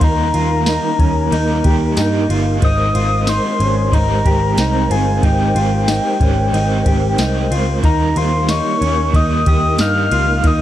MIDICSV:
0, 0, Header, 1, 7, 480
1, 0, Start_track
1, 0, Key_signature, -4, "major"
1, 0, Tempo, 652174
1, 10, Time_signature, 4, 2, 24, 8
1, 7813, End_track
2, 0, Start_track
2, 0, Title_t, "Soft synth lead"
2, 0, Program_c, 0, 80
2, 30, Note_on_c, 0, 82, 89
2, 1670, Note_off_c, 0, 82, 0
2, 1946, Note_on_c, 0, 87, 110
2, 2423, Note_on_c, 0, 84, 117
2, 2434, Note_off_c, 0, 87, 0
2, 2843, Note_off_c, 0, 84, 0
2, 2843, Note_on_c, 0, 84, 75
2, 2901, Note_on_c, 0, 82, 105
2, 2912, Note_off_c, 0, 84, 0
2, 3616, Note_on_c, 0, 80, 88
2, 3627, Note_off_c, 0, 82, 0
2, 3857, Note_on_c, 0, 79, 89
2, 3868, Note_off_c, 0, 80, 0
2, 5533, Note_off_c, 0, 79, 0
2, 5777, Note_on_c, 0, 82, 94
2, 6016, Note_on_c, 0, 84, 90
2, 6027, Note_off_c, 0, 82, 0
2, 6255, Note_on_c, 0, 85, 110
2, 6266, Note_off_c, 0, 84, 0
2, 6740, Note_on_c, 0, 87, 102
2, 6751, Note_off_c, 0, 85, 0
2, 6975, Note_off_c, 0, 87, 0
2, 6979, Note_on_c, 0, 87, 96
2, 7198, Note_off_c, 0, 87, 0
2, 7218, Note_on_c, 0, 89, 115
2, 7705, Note_on_c, 0, 87, 100
2, 7716, Note_off_c, 0, 89, 0
2, 7813, Note_off_c, 0, 87, 0
2, 7813, End_track
3, 0, Start_track
3, 0, Title_t, "Clean electric guitar"
3, 0, Program_c, 1, 27
3, 12, Note_on_c, 1, 63, 94
3, 251, Note_off_c, 1, 63, 0
3, 252, Note_on_c, 1, 65, 74
3, 491, Note_off_c, 1, 65, 0
3, 491, Note_on_c, 1, 63, 88
3, 728, Note_off_c, 1, 63, 0
3, 731, Note_on_c, 1, 61, 72
3, 968, Note_off_c, 1, 61, 0
3, 971, Note_on_c, 1, 63, 96
3, 1210, Note_off_c, 1, 63, 0
3, 1210, Note_on_c, 1, 67, 72
3, 1450, Note_off_c, 1, 67, 0
3, 1450, Note_on_c, 1, 63, 88
3, 1689, Note_off_c, 1, 63, 0
3, 1691, Note_on_c, 1, 65, 77
3, 1930, Note_off_c, 1, 65, 0
3, 1932, Note_on_c, 1, 63, 97
3, 2170, Note_off_c, 1, 63, 0
3, 2170, Note_on_c, 1, 65, 81
3, 2410, Note_off_c, 1, 65, 0
3, 2412, Note_on_c, 1, 63, 96
3, 2648, Note_off_c, 1, 63, 0
3, 2651, Note_on_c, 1, 61, 71
3, 2890, Note_off_c, 1, 61, 0
3, 2893, Note_on_c, 1, 63, 89
3, 3131, Note_off_c, 1, 63, 0
3, 3134, Note_on_c, 1, 67, 79
3, 3371, Note_on_c, 1, 63, 88
3, 3372, Note_off_c, 1, 67, 0
3, 3610, Note_off_c, 1, 63, 0
3, 3612, Note_on_c, 1, 65, 77
3, 3850, Note_off_c, 1, 65, 0
3, 3850, Note_on_c, 1, 63, 94
3, 4088, Note_on_c, 1, 65, 87
3, 4090, Note_off_c, 1, 63, 0
3, 4326, Note_on_c, 1, 63, 91
3, 4329, Note_off_c, 1, 65, 0
3, 4566, Note_off_c, 1, 63, 0
3, 4569, Note_on_c, 1, 61, 81
3, 4806, Note_off_c, 1, 61, 0
3, 4809, Note_on_c, 1, 63, 94
3, 5049, Note_off_c, 1, 63, 0
3, 5049, Note_on_c, 1, 67, 77
3, 5289, Note_off_c, 1, 67, 0
3, 5293, Note_on_c, 1, 63, 84
3, 5529, Note_on_c, 1, 65, 77
3, 5531, Note_off_c, 1, 63, 0
3, 5768, Note_on_c, 1, 63, 95
3, 5769, Note_off_c, 1, 65, 0
3, 6008, Note_off_c, 1, 63, 0
3, 6010, Note_on_c, 1, 65, 83
3, 6245, Note_on_c, 1, 63, 92
3, 6250, Note_off_c, 1, 65, 0
3, 6484, Note_off_c, 1, 63, 0
3, 6487, Note_on_c, 1, 61, 74
3, 6725, Note_off_c, 1, 61, 0
3, 6728, Note_on_c, 1, 63, 88
3, 6969, Note_off_c, 1, 63, 0
3, 6970, Note_on_c, 1, 67, 64
3, 7209, Note_off_c, 1, 67, 0
3, 7209, Note_on_c, 1, 63, 89
3, 7448, Note_on_c, 1, 65, 85
3, 7449, Note_off_c, 1, 63, 0
3, 7688, Note_on_c, 1, 63, 95
3, 7689, Note_off_c, 1, 65, 0
3, 7813, Note_off_c, 1, 63, 0
3, 7813, End_track
4, 0, Start_track
4, 0, Title_t, "Tonewheel organ"
4, 0, Program_c, 2, 16
4, 0, Note_on_c, 2, 58, 70
4, 0, Note_on_c, 2, 63, 56
4, 0, Note_on_c, 2, 70, 73
4, 1901, Note_off_c, 2, 58, 0
4, 1901, Note_off_c, 2, 63, 0
4, 1926, Note_on_c, 2, 56, 73
4, 1929, Note_on_c, 2, 72, 58
4, 5738, Note_off_c, 2, 56, 0
4, 5740, Note_off_c, 2, 72, 0
4, 5760, Note_on_c, 2, 63, 62
4, 5761, Note_on_c, 2, 58, 64
4, 7813, Note_off_c, 2, 58, 0
4, 7813, Note_off_c, 2, 63, 0
4, 7813, Note_off_c, 2, 70, 0
4, 7813, End_track
5, 0, Start_track
5, 0, Title_t, "Overdriven electric guitar"
5, 0, Program_c, 3, 29
5, 0, Note_on_c, 3, 51, 70
5, 12, Note_on_c, 3, 55, 75
5, 22, Note_on_c, 3, 58, 84
5, 33, Note_on_c, 3, 63, 86
5, 42, Note_on_c, 3, 67, 74
5, 958, Note_off_c, 3, 55, 0
5, 961, Note_on_c, 3, 55, 68
5, 965, Note_off_c, 3, 58, 0
5, 974, Note_on_c, 3, 58, 69
5, 977, Note_off_c, 3, 63, 0
5, 980, Note_on_c, 3, 63, 70
5, 987, Note_off_c, 3, 67, 0
5, 990, Note_on_c, 3, 67, 88
5, 1439, Note_off_c, 3, 55, 0
5, 1442, Note_on_c, 3, 55, 73
5, 1446, Note_off_c, 3, 58, 0
5, 1455, Note_on_c, 3, 58, 69
5, 1461, Note_off_c, 3, 63, 0
5, 1464, Note_on_c, 3, 63, 77
5, 1467, Note_off_c, 3, 67, 0
5, 1470, Note_on_c, 3, 67, 79
5, 1915, Note_off_c, 3, 55, 0
5, 1918, Note_on_c, 3, 56, 84
5, 1932, Note_off_c, 3, 58, 0
5, 1935, Note_on_c, 3, 60, 73
5, 1940, Note_off_c, 3, 67, 0
5, 1945, Note_off_c, 3, 63, 0
5, 1948, Note_on_c, 3, 63, 78
5, 1962, Note_on_c, 3, 67, 82
5, 2574, Note_off_c, 3, 51, 0
5, 2874, Note_off_c, 3, 56, 0
5, 2882, Note_on_c, 3, 56, 63
5, 2883, Note_off_c, 3, 60, 0
5, 2892, Note_on_c, 3, 60, 72
5, 2899, Note_off_c, 3, 63, 0
5, 2902, Note_on_c, 3, 63, 60
5, 2905, Note_off_c, 3, 67, 0
5, 2909, Note_on_c, 3, 67, 73
5, 3354, Note_off_c, 3, 56, 0
5, 3363, Note_on_c, 3, 56, 65
5, 3364, Note_off_c, 3, 60, 0
5, 3373, Note_on_c, 3, 60, 74
5, 3380, Note_off_c, 3, 63, 0
5, 3383, Note_on_c, 3, 63, 65
5, 3385, Note_off_c, 3, 67, 0
5, 3836, Note_off_c, 3, 56, 0
5, 3843, Note_off_c, 3, 60, 0
5, 3845, Note_on_c, 3, 56, 78
5, 3852, Note_on_c, 3, 60, 74
5, 3855, Note_off_c, 3, 63, 0
5, 3858, Note_on_c, 3, 63, 88
5, 3865, Note_on_c, 3, 67, 98
5, 4563, Note_off_c, 3, 67, 0
5, 4565, Note_on_c, 3, 67, 60
5, 4567, Note_off_c, 3, 56, 0
5, 4571, Note_off_c, 3, 60, 0
5, 4575, Note_off_c, 3, 63, 0
5, 4578, Note_on_c, 3, 63, 57
5, 4591, Note_on_c, 3, 60, 46
5, 4807, Note_off_c, 3, 67, 0
5, 4807, Note_on_c, 3, 56, 72
5, 4809, Note_off_c, 3, 60, 0
5, 4814, Note_off_c, 3, 63, 0
5, 4818, Note_on_c, 3, 60, 71
5, 4825, Note_on_c, 3, 63, 77
5, 4836, Note_on_c, 3, 67, 77
5, 5273, Note_off_c, 3, 56, 0
5, 5282, Note_off_c, 3, 60, 0
5, 5282, Note_on_c, 3, 56, 76
5, 5291, Note_on_c, 3, 60, 74
5, 5297, Note_off_c, 3, 63, 0
5, 5300, Note_on_c, 3, 63, 68
5, 5304, Note_off_c, 3, 67, 0
5, 5309, Note_on_c, 3, 67, 82
5, 5762, Note_off_c, 3, 56, 0
5, 5762, Note_on_c, 3, 51, 80
5, 5765, Note_on_c, 3, 55, 76
5, 5768, Note_off_c, 3, 60, 0
5, 5771, Note_on_c, 3, 58, 77
5, 5773, Note_off_c, 3, 63, 0
5, 5776, Note_on_c, 3, 63, 90
5, 5777, Note_off_c, 3, 67, 0
5, 5780, Note_on_c, 3, 67, 89
5, 6472, Note_off_c, 3, 67, 0
5, 6481, Note_on_c, 3, 67, 50
5, 6487, Note_off_c, 3, 55, 0
5, 6490, Note_off_c, 3, 58, 0
5, 6495, Note_off_c, 3, 63, 0
5, 6498, Note_on_c, 3, 63, 48
5, 6508, Note_on_c, 3, 58, 45
5, 6720, Note_on_c, 3, 55, 64
5, 6722, Note_off_c, 3, 58, 0
5, 6725, Note_off_c, 3, 67, 0
5, 6731, Note_on_c, 3, 58, 62
5, 6732, Note_off_c, 3, 63, 0
5, 6740, Note_on_c, 3, 63, 75
5, 6748, Note_on_c, 3, 67, 76
5, 7191, Note_off_c, 3, 55, 0
5, 7200, Note_on_c, 3, 55, 59
5, 7204, Note_off_c, 3, 58, 0
5, 7213, Note_on_c, 3, 58, 65
5, 7219, Note_off_c, 3, 63, 0
5, 7219, Note_off_c, 3, 67, 0
5, 7222, Note_on_c, 3, 63, 69
5, 7229, Note_on_c, 3, 67, 64
5, 7672, Note_off_c, 3, 51, 0
5, 7675, Note_on_c, 3, 51, 81
5, 7679, Note_off_c, 3, 55, 0
5, 7688, Note_on_c, 3, 55, 79
5, 7689, Note_off_c, 3, 58, 0
5, 7698, Note_on_c, 3, 58, 78
5, 7699, Note_off_c, 3, 67, 0
5, 7705, Note_off_c, 3, 63, 0
5, 7708, Note_on_c, 3, 63, 78
5, 7718, Note_on_c, 3, 67, 86
5, 7813, Note_off_c, 3, 51, 0
5, 7813, Note_off_c, 3, 55, 0
5, 7813, Note_off_c, 3, 58, 0
5, 7813, Note_off_c, 3, 63, 0
5, 7813, Note_off_c, 3, 67, 0
5, 7813, End_track
6, 0, Start_track
6, 0, Title_t, "Picked electric bass"
6, 0, Program_c, 4, 34
6, 10, Note_on_c, 4, 39, 111
6, 221, Note_off_c, 4, 39, 0
6, 253, Note_on_c, 4, 39, 95
6, 568, Note_off_c, 4, 39, 0
6, 730, Note_on_c, 4, 39, 99
6, 941, Note_off_c, 4, 39, 0
6, 970, Note_on_c, 4, 39, 106
6, 1181, Note_off_c, 4, 39, 0
6, 1213, Note_on_c, 4, 39, 94
6, 1423, Note_off_c, 4, 39, 0
6, 1451, Note_on_c, 4, 43, 94
6, 1662, Note_off_c, 4, 43, 0
6, 1689, Note_on_c, 4, 31, 79
6, 1900, Note_off_c, 4, 31, 0
6, 1931, Note_on_c, 4, 32, 108
6, 2142, Note_off_c, 4, 32, 0
6, 2170, Note_on_c, 4, 32, 106
6, 2487, Note_off_c, 4, 32, 0
6, 2649, Note_on_c, 4, 32, 93
6, 2860, Note_off_c, 4, 32, 0
6, 2887, Note_on_c, 4, 32, 109
6, 3100, Note_off_c, 4, 32, 0
6, 3131, Note_on_c, 4, 32, 113
6, 3341, Note_off_c, 4, 32, 0
6, 3366, Note_on_c, 4, 36, 91
6, 3579, Note_off_c, 4, 36, 0
6, 3607, Note_on_c, 4, 31, 83
6, 3819, Note_off_c, 4, 31, 0
6, 3850, Note_on_c, 4, 32, 99
6, 4061, Note_off_c, 4, 32, 0
6, 4087, Note_on_c, 4, 32, 103
6, 4405, Note_off_c, 4, 32, 0
6, 4567, Note_on_c, 4, 32, 91
6, 4779, Note_off_c, 4, 32, 0
6, 4805, Note_on_c, 4, 32, 97
6, 5018, Note_off_c, 4, 32, 0
6, 5048, Note_on_c, 4, 32, 93
6, 5260, Note_off_c, 4, 32, 0
6, 5289, Note_on_c, 4, 36, 106
6, 5500, Note_off_c, 4, 36, 0
6, 5526, Note_on_c, 4, 37, 78
6, 5739, Note_off_c, 4, 37, 0
6, 5766, Note_on_c, 4, 39, 110
6, 5979, Note_off_c, 4, 39, 0
6, 6008, Note_on_c, 4, 39, 97
6, 6325, Note_off_c, 4, 39, 0
6, 6488, Note_on_c, 4, 39, 92
6, 6700, Note_off_c, 4, 39, 0
6, 6725, Note_on_c, 4, 39, 121
6, 6938, Note_off_c, 4, 39, 0
6, 6968, Note_on_c, 4, 39, 90
6, 7180, Note_off_c, 4, 39, 0
6, 7205, Note_on_c, 4, 43, 93
6, 7418, Note_off_c, 4, 43, 0
6, 7444, Note_on_c, 4, 37, 91
6, 7657, Note_off_c, 4, 37, 0
6, 7685, Note_on_c, 4, 39, 101
6, 7813, Note_off_c, 4, 39, 0
6, 7813, End_track
7, 0, Start_track
7, 0, Title_t, "Drums"
7, 9, Note_on_c, 9, 36, 104
7, 9, Note_on_c, 9, 51, 66
7, 83, Note_off_c, 9, 36, 0
7, 83, Note_off_c, 9, 51, 0
7, 250, Note_on_c, 9, 51, 40
7, 323, Note_off_c, 9, 51, 0
7, 488, Note_on_c, 9, 38, 103
7, 488, Note_on_c, 9, 54, 61
7, 491, Note_on_c, 9, 51, 75
7, 562, Note_off_c, 9, 38, 0
7, 562, Note_off_c, 9, 54, 0
7, 564, Note_off_c, 9, 51, 0
7, 730, Note_on_c, 9, 36, 86
7, 733, Note_on_c, 9, 51, 39
7, 804, Note_off_c, 9, 36, 0
7, 806, Note_off_c, 9, 51, 0
7, 974, Note_on_c, 9, 51, 61
7, 1048, Note_off_c, 9, 51, 0
7, 1209, Note_on_c, 9, 51, 46
7, 1212, Note_on_c, 9, 36, 95
7, 1283, Note_off_c, 9, 51, 0
7, 1285, Note_off_c, 9, 36, 0
7, 1449, Note_on_c, 9, 51, 61
7, 1451, Note_on_c, 9, 54, 68
7, 1452, Note_on_c, 9, 38, 103
7, 1522, Note_off_c, 9, 51, 0
7, 1524, Note_off_c, 9, 54, 0
7, 1525, Note_off_c, 9, 38, 0
7, 1694, Note_on_c, 9, 51, 43
7, 1767, Note_off_c, 9, 51, 0
7, 1929, Note_on_c, 9, 51, 58
7, 1931, Note_on_c, 9, 36, 97
7, 2003, Note_off_c, 9, 51, 0
7, 2004, Note_off_c, 9, 36, 0
7, 2171, Note_on_c, 9, 51, 42
7, 2245, Note_off_c, 9, 51, 0
7, 2408, Note_on_c, 9, 38, 105
7, 2408, Note_on_c, 9, 54, 71
7, 2410, Note_on_c, 9, 51, 72
7, 2481, Note_off_c, 9, 38, 0
7, 2482, Note_off_c, 9, 54, 0
7, 2484, Note_off_c, 9, 51, 0
7, 2652, Note_on_c, 9, 51, 38
7, 2725, Note_off_c, 9, 51, 0
7, 2889, Note_on_c, 9, 36, 87
7, 2895, Note_on_c, 9, 51, 66
7, 2962, Note_off_c, 9, 36, 0
7, 2969, Note_off_c, 9, 51, 0
7, 3131, Note_on_c, 9, 36, 88
7, 3132, Note_on_c, 9, 51, 46
7, 3205, Note_off_c, 9, 36, 0
7, 3206, Note_off_c, 9, 51, 0
7, 3368, Note_on_c, 9, 51, 61
7, 3370, Note_on_c, 9, 54, 74
7, 3371, Note_on_c, 9, 38, 104
7, 3442, Note_off_c, 9, 51, 0
7, 3444, Note_off_c, 9, 54, 0
7, 3445, Note_off_c, 9, 38, 0
7, 3613, Note_on_c, 9, 51, 46
7, 3686, Note_off_c, 9, 51, 0
7, 3850, Note_on_c, 9, 36, 96
7, 3850, Note_on_c, 9, 51, 59
7, 3923, Note_off_c, 9, 36, 0
7, 3924, Note_off_c, 9, 51, 0
7, 4091, Note_on_c, 9, 51, 41
7, 4165, Note_off_c, 9, 51, 0
7, 4328, Note_on_c, 9, 38, 99
7, 4328, Note_on_c, 9, 54, 66
7, 4330, Note_on_c, 9, 51, 72
7, 4401, Note_off_c, 9, 38, 0
7, 4402, Note_off_c, 9, 54, 0
7, 4404, Note_off_c, 9, 51, 0
7, 4568, Note_on_c, 9, 36, 92
7, 4569, Note_on_c, 9, 51, 37
7, 4641, Note_off_c, 9, 36, 0
7, 4642, Note_off_c, 9, 51, 0
7, 4814, Note_on_c, 9, 51, 57
7, 4888, Note_off_c, 9, 51, 0
7, 5048, Note_on_c, 9, 51, 48
7, 5049, Note_on_c, 9, 36, 83
7, 5122, Note_off_c, 9, 36, 0
7, 5122, Note_off_c, 9, 51, 0
7, 5287, Note_on_c, 9, 51, 61
7, 5289, Note_on_c, 9, 54, 68
7, 5290, Note_on_c, 9, 38, 103
7, 5361, Note_off_c, 9, 51, 0
7, 5362, Note_off_c, 9, 54, 0
7, 5364, Note_off_c, 9, 38, 0
7, 5532, Note_on_c, 9, 51, 48
7, 5606, Note_off_c, 9, 51, 0
7, 5767, Note_on_c, 9, 36, 98
7, 5767, Note_on_c, 9, 51, 59
7, 5841, Note_off_c, 9, 36, 0
7, 5841, Note_off_c, 9, 51, 0
7, 6007, Note_on_c, 9, 51, 41
7, 6080, Note_off_c, 9, 51, 0
7, 6246, Note_on_c, 9, 38, 111
7, 6246, Note_on_c, 9, 54, 67
7, 6248, Note_on_c, 9, 51, 72
7, 6320, Note_off_c, 9, 38, 0
7, 6320, Note_off_c, 9, 54, 0
7, 6322, Note_off_c, 9, 51, 0
7, 6491, Note_on_c, 9, 51, 36
7, 6564, Note_off_c, 9, 51, 0
7, 6724, Note_on_c, 9, 36, 100
7, 6730, Note_on_c, 9, 51, 61
7, 6798, Note_off_c, 9, 36, 0
7, 6804, Note_off_c, 9, 51, 0
7, 6965, Note_on_c, 9, 51, 46
7, 6967, Note_on_c, 9, 36, 90
7, 7038, Note_off_c, 9, 51, 0
7, 7040, Note_off_c, 9, 36, 0
7, 7201, Note_on_c, 9, 51, 55
7, 7203, Note_on_c, 9, 54, 74
7, 7205, Note_on_c, 9, 38, 120
7, 7275, Note_off_c, 9, 51, 0
7, 7277, Note_off_c, 9, 54, 0
7, 7278, Note_off_c, 9, 38, 0
7, 7444, Note_on_c, 9, 51, 47
7, 7518, Note_off_c, 9, 51, 0
7, 7682, Note_on_c, 9, 51, 62
7, 7685, Note_on_c, 9, 36, 91
7, 7756, Note_off_c, 9, 51, 0
7, 7759, Note_off_c, 9, 36, 0
7, 7813, End_track
0, 0, End_of_file